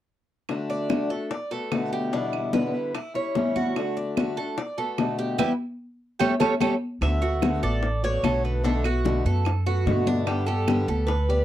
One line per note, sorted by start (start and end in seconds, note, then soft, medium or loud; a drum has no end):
0.49 0.88 D3 medium
0.49 0.88 A3 medium
0.49 0.89 D4 medium
0.49 0.90 F#4 medium
0.49 high bongo medium
0.49 high conga soft
0.49 claves soft
0.69 1.09 D5 medium
0.69 high conga soft
0.89 1.09 D3 medium
0.89 1.09 A3 medium
0.89 1.10 D4 medium
0.89 1.09 F#4 medium
0.89 high bongo medium
0.89 high conga medium
0.89 claves medium
1.10 1.30 A3 soft
1.10 1.31 D4 soft
1.10 1.30 F#4 soft
1.10 1.30 A4 medium
1.10 high conga soft
1.30 1.51 D5 medium
1.30 muted steel-string acoustic guitar stroke soft
1.30 high bongo medium
1.30 high conga soft
1.51 1.71 A3 soft
1.51 1.71 B3 soft
1.51 1.71 F#4 soft
1.51 1.91 A4 medium
1.51 high conga soft
1.72 2.11 B2 medium
1.72 2.12 D3 medium
1.72 2.12 A3 medium
1.72 2.12 B3 medium
1.72 2.12 F#4 medium
1.72 high bongo medium
1.72 low bongo medium
1.72 high conga soft
1.72 claves medium
1.92 2.12 G4 medium
1.92 high conga soft
2.12 2.52 E2 medium
2.12 2.52 B2 medium
2.12 2.52 D3 medium
2.12 2.53 G3 medium
2.12 2.53 B3 medium
2.12 2.52 D4 medium
2.12 2.53 E4 medium
2.12 high bongo medium
2.12 high conga soft
2.33 high bongo soft
2.33 high conga soft
2.33 claves medium
2.53 2.73 E2 medium
2.53 2.73 B2 medium
2.53 2.73 D3 medium
2.53 2.73 G3 medium
2.53 2.73 B3 medium
2.53 2.72 E4 medium
2.53 2.93 B4 medium
2.53 high bongo medium
2.53 high conga medium
2.73 2.94 D3 soft
2.73 2.94 G3 soft
2.73 2.94 B3 soft
2.73 2.93 E4 soft
2.94 3.14 E4 medium
2.94 muted steel-string acoustic guitar stroke soft
2.94 high bongo medium
2.94 high conga soft
2.94 claves soft
3.14 3.35 G3 soft
3.14 3.34 C#4 soft
3.14 3.34 E4 soft
3.14 3.54 C#5 medium
3.14 high bongo soft
3.14 high conga soft
3.35 3.75 A2 medium
3.35 3.75 E3 medium
3.35 3.76 G3 medium
3.35 3.76 C#4 medium
3.35 3.76 E4 medium
3.35 high bongo medium
3.35 low bongo medium
3.35 high conga medium
3.56 3.95 F#4 medium
3.56 high bongo soft
3.56 high conga medium
3.76 4.16 D3 medium
3.76 4.16 A3 medium
3.76 4.17 D4 medium
3.76 4.17 F#4 medium
3.76 high bongo medium
3.76 high conga soft
3.76 claves soft
3.97 4.36 D5 medium
3.97 high conga soft
4.17 4.36 D3 medium
4.17 4.37 A3 medium
4.17 4.37 D4 medium
4.17 4.36 F#4 medium
4.17 high bongo medium
4.17 high conga medium
4.17 claves medium
4.37 4.57 A3 soft
4.37 4.57 D4 soft
4.37 4.57 F#4 soft
4.37 4.57 A4 medium
4.37 high conga soft
4.57 4.77 D5 medium
4.57 muted steel-string acoustic guitar stroke medium
4.57 high bongo medium
4.57 high conga soft
4.78 4.98 A3 soft
4.78 4.98 B3 soft
4.78 4.97 F#4 soft
4.78 5.17 A4 medium
4.78 high conga soft
4.98 5.38 B2 medium
4.98 5.38 D3 medium
4.98 5.38 A3 medium
4.98 5.37 B3 medium
4.98 5.39 F#4 medium
4.98 high bongo medium
4.98 low bongo medium
4.98 high conga soft
4.98 claves medium
5.19 5.37 G4 medium
5.19 high conga soft
5.38 5.52 E3 medium
5.38 5.51 G3 medium
5.38 5.52 B3 medium
5.38 5.52 E4 medium
5.38 5.52 G4 medium
5.38 5.52 B4 medium
5.38 low bongo medium
5.38 high conga medium
5.38 claves medium
6.19 6.34 G3 medium
6.19 6.33 A3 medium
6.19 6.33 C#4 medium
6.19 6.33 G4 medium
6.19 6.33 A4 medium
6.19 6.33 C#5 medium
6.19 low bongo medium
6.19 high conga medium
6.19 claves medium
6.40 6.54 G3 medium
6.40 6.54 A3 medium
6.40 6.54 C#4 medium
6.40 6.53 G4 medium
6.40 6.53 A4 medium
6.40 6.53 C#5 medium
6.40 low bongo loud
6.40 high conga medium
6.40 claves medium
6.60 6.74 G3 medium
6.60 6.74 A3 medium
6.60 6.74 C#4 medium
6.60 6.74 G4 medium
6.60 6.74 A4 medium
6.60 6.74 C#5 medium
6.60 low bongo medium
6.60 high conga medium
6.60 claves medium
7.01 7.59 D2 medium
7.01 7.22 D3 medium
7.01 7.22 A3 medium
7.01 7.22 B3 medium
7.01 7.21 F#4 medium
7.01 7.59 E5 medium
7.01 high bongo medium
7.01 high conga soft
7.01 claves medium
7.22 7.42 A3 soft
7.22 7.42 B3 soft
7.22 7.61 F#4 medium
7.22 7.42 F#4 medium
7.22 high conga soft
7.42 7.62 D3 medium
7.42 7.62 A3 medium
7.42 7.62 B3 medium
7.42 7.61 F#4 medium
7.42 high bongo medium
7.42 high conga loud
7.42 claves medium
7.62 8.20 A1 medium
7.62 7.82 A3 soft
7.62 7.82 B3 soft
7.62 7.82 F#4 soft
7.62 8.02 A4 medium
7.62 8.04 D5 medium
7.62 high conga soft
7.83 muted steel-string acoustic guitar stroke medium
7.83 high bongo medium
7.83 high conga soft
8.03 8.22 A3 soft
8.03 8.23 B3 soft
8.03 8.23 F#4 soft
8.03 8.42 C#5 medium
8.03 8.23 D5 medium
8.03 high conga soft
8.23 9.19 B1 medium
8.23 8.63 D3 medium
8.23 8.63 A3 medium
8.23 8.64 B3 medium
8.23 8.64 F#4 medium
8.23 8.64 A4 medium
8.23 high bongo medium
8.23 low bongo medium
8.23 high conga soft
8.23 claves medium
8.44 8.64 B4 medium
8.44 high conga soft
8.64 8.84 B2 medium
8.64 8.84 D3 medium
8.64 8.84 A3 medium
8.64 8.84 B3 medium
8.64 8.85 D4 medium
8.64 8.83 F#4 medium
8.64 8.86 A4 medium
8.64 high bongo medium
8.64 high conga soft
8.84 9.04 A3 soft
8.84 9.05 B3 soft
8.84 9.04 F#4 soft
8.84 9.23 F#4 medium
8.84 9.25 F#4 medium
8.84 high bongo soft
8.84 high conga soft
8.84 claves medium
9.05 9.24 B2 medium
9.05 9.25 D3 medium
9.05 9.25 A3 medium
9.05 9.25 B3 medium
9.05 9.24 F#4 medium
9.05 high bongo medium
9.05 high conga medium
9.25 9.83 F#2 medium
9.25 9.46 A3 soft
9.25 9.45 B3 soft
9.25 9.45 F#4 soft
9.25 9.65 A4 medium
9.45 muted steel-string acoustic guitar stroke medium
9.45 high bongo medium
9.45 high conga soft
9.45 claves medium
9.66 9.85 A3 soft
9.66 9.86 B3 soft
9.66 9.86 F#4 soft
9.66 10.06 F#4 medium
9.66 high bongo soft
9.66 high conga soft
9.86 10.82 G2 medium
9.86 10.26 B2 medium
9.86 10.25 D3 medium
9.86 10.27 A3 medium
9.86 10.27 B3 medium
9.86 10.27 F#4 medium
9.86 high bongo medium
9.86 low bongo medium
9.86 high conga medium
10.07 10.47 D4 medium
10.07 high bongo soft
10.07 high conga medium
10.27 10.47 D3 medium
10.27 10.47 G3 medium
10.27 10.47 B3 medium
10.27 10.46 G4 medium
10.27 10.47 G4 medium
10.27 high bongo medium
10.27 claves medium
10.47 10.67 G3 soft
10.47 10.68 B3 soft
10.47 10.87 G4 medium
10.47 10.67 G4 soft
10.47 11.10 A4 medium
10.47 high conga soft
10.68 10.87 D3 medium
10.68 10.88 G3 medium
10.68 10.88 B3 medium
10.68 10.87 G4 medium
10.68 high bongo medium
10.68 high conga medium
10.68 claves medium
10.88 11.45 D2 loud
10.88 11.08 B3 soft
10.88 11.08 G4 soft
10.88 11.28 A4 medium
10.88 high conga soft
11.07 11.45 B4 medium
11.07 muted steel-string acoustic guitar stroke medium
11.07 high bongo medium
11.07 high conga soft
11.29 11.45 G3 soft
11.29 11.45 B3 soft
11.29 11.45 G4 medium
11.29 11.45 D5 medium
11.29 high conga soft